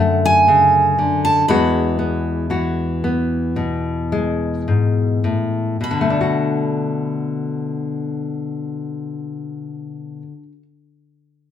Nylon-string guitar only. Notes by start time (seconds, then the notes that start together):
Already playing: F#2 D3 F#4
0.00 A3
0.48 C#3
0.99 D3
1.48 E2 E3 G#3 B3 F#4
1.99 B3
2.50 E3 F#4
3.04 B3
3.56 B2
4.12 G#3
4.68 G#2
5.24 A2
5.81 B2
5.91 D3
6.01 A3
6.10 D4
6.21 F#4